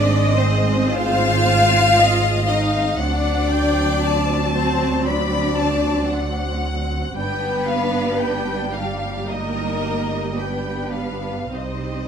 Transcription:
0.00 2.94 G#1 medium
0.00 2.94 G#3 medium
0.00 2.94 C4 medium
0.00 0.35 D4 loud
0.00 0.32 D5 loud
0.00 0.93 D#5 medium
0.35 0.91 C4 medium
0.35 0.93 C5 medium
0.92 2.46 F4 medium
0.92 1.96 C5 medium
0.92 2.46 F5 loud
1.97 2.47 D#5 medium
2.46 2.98 D#4 medium
2.46 2.98 D#5 medium
2.46 2.97 F5 medium
2.97 7.11 D2 medium
2.97 7.12 F#3 medium
2.97 7.12 C4 medium
2.97 4.54 D4 medium
2.97 4.55 D5 loud
2.97 3.50 F#5 medium
3.51 4.03 G5 medium
4.04 5.07 A5 medium
4.54 5.05 C4 medium
4.54 5.05 C5 medium
5.06 6.62 D4 medium
5.06 6.63 D5 medium
5.06 5.56 B5 medium
5.57 6.09 A5 medium
6.10 7.16 F#5 medium
7.15 11.48 G1 medium
7.15 11.48 G3 medium
7.15 8.69 B3 medium
7.15 9.24 D4 medium
7.15 8.70 B4 medium
7.15 7.67 G5 medium
7.67 8.20 F5 medium
8.20 8.73 G5 medium
8.73 9.28 G3 medium
8.73 9.27 G4 medium
8.73 9.28 F5 medium
9.27 10.37 A#3 medium
9.27 10.33 D#4 soft
9.27 10.36 A#4 medium
9.27 10.37 D#5 medium
10.36 11.52 B3 soft
10.36 11.48 D4 soft
10.36 11.52 B4 medium
10.36 10.93 G5 soft
10.93 11.51 F5 soft
11.52 12.08 C2 soft
11.52 12.08 G3 soft
11.52 12.08 C4 soft
11.52 12.08 D#4 soft
11.52 12.08 C5 medium
11.52 12.08 D#5 soft

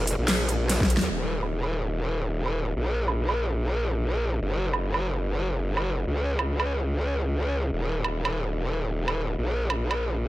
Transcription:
0.00 0.17 F1 loud
0.07 open hi-hat loud
0.18 0.99 A#1 loud
0.28 snare loud
0.28 clap medium
0.28 closed hi-hat medium
0.28 crash medium
0.49 closed hi-hat medium
0.69 snare medium
0.69 closed hi-hat medium
0.69 crash soft
0.80 kick medium
0.80 snare medium
0.90 closed hi-hat medium
0.97 snare loud
1.01 1.09 D#2 loud
1.01 closed hi-hat soft
1.11 2.74 D#1 medium
1.43 low woodblock medium
1.63 low woodblock medium
2.46 low woodblock soft
2.76 4.40 A#1 medium
3.08 low woodblock medium
3.29 low woodblock medium
4.42 6.05 F#1 medium
4.73 low woodblock medium
4.94 low woodblock medium
5.77 low woodblock medium
6.07 7.71 C#2 medium
6.39 low woodblock medium
6.60 low woodblock medium
7.73 9.36 D#1 medium
8.04 low woodblock medium
8.25 low woodblock medium
9.08 low woodblock medium
9.38 10.28 A#1 medium
9.70 low woodblock medium
9.91 low woodblock medium

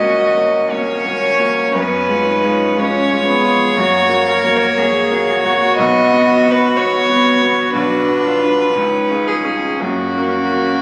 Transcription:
0.00 1.76 C#2 medium
0.00 0.02 A#3 medium
0.00 0.33 A#3 soft
0.00 0.66 C#4 medium
0.00 0.03 F#4 medium
0.00 0.73 F#4 medium
0.00 0.34 F#4 soft
0.00 0.03 C#5 medium
0.00 0.34 C#5 medium
0.00 0.73 D#5 loud
0.37 0.68 A#3 soft
0.37 0.68 F#4 medium
0.37 0.68 C#5 medium
0.71 1.78 A#3 medium
0.71 1.03 A#3 soft
0.71 1.72 C#4 medium
0.71 1.03 F#4 soft
0.71 1.74 C#5 loud
0.71 1.03 C#5 medium
1.06 1.36 A#3 medium
1.06 1.37 F#4 medium
1.06 1.37 C#5 medium
1.39 1.71 A#3 medium
1.39 1.71 F#4 medium
1.39 1.71 C#5 medium
1.74 2.08 F#2 medium
1.74 2.27 B3 medium
1.74 2.76 C#4 medium
1.74 2.81 B4 loud
2.08 2.40 G#3 medium
2.08 2.40 F4 medium
2.08 2.40 C#5 medium
2.28 2.80 D#4 medium
2.44 2.74 G#3 medium
2.44 2.75 F4 medium
2.44 2.75 C#5 medium
2.77 3.07 G#3 medium
2.77 3.27 C#4 medium
2.77 3.08 F4 medium
2.77 3.08 C#5 medium
2.77 5.77 C#5 loud
3.11 3.41 G#3 medium
3.11 3.41 F4 medium
3.11 3.41 C#5 medium
3.27 3.76 B3 medium
3.27 3.79 G#4 medium
3.43 3.74 G#3 medium
3.43 3.74 F4 medium
3.43 3.74 C#5 medium
3.76 4.09 F#2 medium
3.76 5.73 A#3 medium
3.76 4.29 F#4 medium
4.09 4.40 A#3 medium
4.09 4.40 F#4 medium
4.09 4.41 C#5 medium
4.28 4.79 A#4 loud
4.44 4.75 A#3 medium
4.44 4.75 F#4 medium
4.44 4.75 C#5 medium
4.78 5.08 A#3 medium
4.78 5.08 F#4 medium
4.78 5.32 G#4 loud
4.78 5.08 C#5 medium
5.11 5.41 A#3 medium
5.11 5.41 F#4 medium
5.11 5.42 C#5 medium
5.30 7.74 F#4 loud
5.45 5.74 A#3 medium
5.45 5.74 F#4 medium
5.45 5.75 C#5 medium
5.77 6.10 B1 loud
5.77 6.73 B3 loud
5.77 6.53 D#5 loud
6.12 6.41 B3 medium
6.12 6.41 F#4 medium
6.12 6.41 B4 medium
6.44 6.73 B3 medium
6.44 6.74 F#4 medium
6.44 6.74 B4 medium
6.51 6.78 B4 loud
6.74 7.71 B3 medium
6.74 7.06 B3 medium
6.74 7.06 F#4 medium
6.74 7.06 B4 medium
6.74 7.73 C#5 loud
7.09 7.38 B3 medium
7.09 7.39 F#4 medium
7.09 7.39 B4 medium
7.42 7.71 B3 medium
7.42 7.71 F#4 medium
7.42 7.72 B4 medium
7.73 8.06 B1 medium
7.73 8.73 D4 medium
7.73 8.27 F#4 loud
7.73 9.29 B4 loud
8.08 8.38 D4 medium
8.08 8.38 F#4 medium
8.08 8.39 B4 medium
8.25 8.78 F4 medium
8.41 8.72 D4 medium
8.41 8.72 F#4 medium
8.41 8.72 B4 medium
8.74 9.09 C#2 medium
8.74 9.82 C#4 medium
8.74 9.81 D#4 medium
9.10 9.42 C#4 medium
9.10 9.42 F4 medium
9.10 9.43 G#4 medium
9.27 9.82 G#4 medium
9.44 9.77 C#4 medium
9.44 9.77 F4 medium
9.44 9.77 G#4 medium
9.80 10.16 F#2 medium
9.80 10.82 A#3 medium
9.80 10.82 C#4 medium
9.80 10.82 F#4 medium
10.17 10.49 C#4 soft
10.17 10.49 F#4 soft
10.17 10.50 A#4 soft
10.52 10.82 C#4 soft
10.52 10.82 F#4 soft
10.52 10.82 A#4 soft

